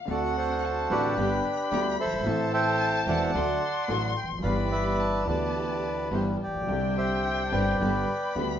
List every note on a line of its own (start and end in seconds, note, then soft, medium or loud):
0.00 0.12 F5 medium
0.05 0.85 D2 medium
0.05 0.86 D2 medium
0.05 0.07 D3 medium
0.05 0.86 D3 medium
0.05 0.85 A3 medium
0.05 0.86 C4 medium
0.05 0.86 D4 medium
0.05 0.86 F#4 medium
0.10 0.36 F#4 medium
0.10 0.36 A4 medium
0.10 0.22 D5 medium
0.10 0.66 F#5 medium
0.37 1.14 F#4 medium
0.37 1.14 A4 medium
0.37 0.92 C5 medium
0.65 1.19 A5 medium
0.90 1.13 A1 medium
0.90 1.13 A2 medium
0.90 1.13 D3 medium
0.90 1.13 A3 medium
0.90 1.13 C4 medium
0.90 1.13 D4 medium
0.90 1.96 D4 medium
0.90 1.13 F#4 medium
0.90 1.95 G4 medium
0.90 1.68 B4 medium
1.17 1.40 G1 medium
1.17 1.41 G1 medium
1.17 1.40 G2 medium
1.17 1.40 D3 medium
1.17 1.40 G3 medium
1.17 1.40 B3 medium
1.17 1.40 D4 medium
1.17 1.40 G4 medium
1.17 2.28 B5 medium
1.71 1.94 D2 medium
1.71 1.95 D2 medium
1.71 1.95 D3 medium
1.71 1.95 G3 medium
1.71 1.94 B3 medium
1.71 1.95 B3 medium
1.71 1.94 D4 medium
1.71 1.94 G4 medium
1.71 1.95 G4 medium
1.71 1.84 D5 medium
2.00 3.04 A4 medium
2.00 2.52 C5 medium
2.00 2.50 E5 loud
2.05 2.12 F#1 soft
2.05 2.13 F#1 soft
2.13 2.19 G1 medium
2.13 2.18 G1 medium
2.19 2.25 G#1 medium
2.19 2.27 G#1 medium
2.24 3.03 A1 medium
2.24 3.04 A1 medium
2.24 3.04 A2 medium
2.24 3.02 E3 medium
2.24 3.03 A3 medium
2.24 3.04 C4 medium
2.24 3.04 E4 medium
2.24 3.04 A4 medium
2.24 3.37 A5 loud
2.29 3.05 A4 medium
2.54 3.31 C5 medium
2.54 3.31 E5 medium
2.54 3.09 G5 loud
3.06 3.30 E1 medium
3.06 3.30 E2 medium
3.06 3.30 E3 medium
3.06 3.30 A3 medium
3.06 3.30 C4 medium
3.06 3.30 E4 medium
3.06 3.31 A4 medium
3.06 4.13 D5 medium
3.06 4.13 F#5 medium
3.06 3.86 A5 medium
3.35 3.58 D2 medium
3.35 3.58 D3 medium
3.35 3.58 F#3 medium
3.35 3.58 A3 medium
3.35 3.58 D4 medium
3.35 3.58 F#4 medium
3.35 3.58 A4 medium
3.35 4.44 C6 loud
3.88 4.12 A1 medium
3.88 4.12 A2 medium
3.88 4.12 F#3 medium
3.88 4.12 A3 medium
3.88 4.12 D4 medium
3.88 4.12 F#4 medium
3.88 4.12 A4 medium
3.88 4.02 A5 medium
4.17 4.29 G5 medium
4.23 4.30 E1 soft
4.23 4.31 E2 soft
4.31 4.37 F1 medium
4.31 4.38 F2 medium
4.38 4.43 F#1 medium
4.38 4.45 F#2 medium
4.43 5.23 G1 medium
4.43 5.24 G1 medium
4.43 5.24 G2 medium
4.43 5.23 E3 medium
4.43 5.22 B3 medium
4.43 5.23 B3 medium
4.43 5.24 D4 medium
4.43 5.23 E4 medium
4.43 5.23 G4 medium
4.43 4.70 B4 medium
4.43 5.27 D5 medium
4.43 4.56 F5 medium
4.43 5.01 B5 medium
4.47 5.25 G4 medium
4.71 5.27 B4 medium
4.71 5.23 E5 medium
5.00 6.40 A5 medium
5.25 6.07 D2 medium
5.25 6.08 D2 medium
5.25 6.08 D3 medium
5.25 6.07 E3 medium
5.25 6.07 B3 medium
5.25 6.08 D4 medium
5.25 6.07 E4 medium
5.25 6.07 G4 medium
5.25 6.37 B4 medium
5.25 6.09 D5 medium
5.29 6.09 G4 medium
6.11 6.35 G1 medium
6.11 6.36 G1 medium
6.11 6.36 G2 medium
6.11 6.36 E3 medium
6.11 6.35 B3 medium
6.11 6.36 B3 medium
6.11 6.36 D4 medium
6.11 6.35 E4 medium
6.11 6.36 G4 medium
6.11 6.25 C5 medium
6.43 6.96 G4 medium
6.43 6.94 D5 medium
6.47 6.54 A1 soft
6.47 6.55 A1 soft
6.54 6.61 A#1 medium
6.54 6.60 A#1 medium
6.61 6.68 B1 medium
6.61 6.69 B1 medium
6.67 7.49 C2 medium
6.67 7.49 C3 medium
6.67 7.48 D3 medium
6.67 7.49 G3 medium
6.67 7.48 C4 medium
6.67 7.49 C4 medium
6.67 7.49 D4 medium
6.67 7.49 G4 medium
6.67 7.50 G4 medium
6.67 7.83 G5 medium
6.97 7.77 G4 medium
6.97 7.77 C5 medium
6.97 7.43 E5 medium
7.46 7.53 A5 medium
7.52 7.76 G1 medium
7.52 7.76 G2 medium
7.52 7.76 D3 medium
7.52 7.76 G3 medium
7.52 7.76 C4 medium
7.52 7.76 D4 medium
7.52 7.76 G4 medium
7.52 8.59 B4 medium
7.52 8.36 D5 medium
7.52 8.32 G5 medium
7.81 8.04 G1 medium
7.81 8.04 G2 medium
7.81 8.04 D3 medium
7.81 8.05 G3 medium
7.81 8.04 B3 medium
7.81 8.04 D4 medium
7.81 8.04 G4 medium
7.81 8.59 B5 medium
8.35 8.59 D2 medium
8.35 8.59 D3 medium
8.35 8.59 G3 medium
8.35 8.59 B3 medium
8.35 8.59 D4 medium
8.35 8.59 G4 medium
8.35 8.49 D5 medium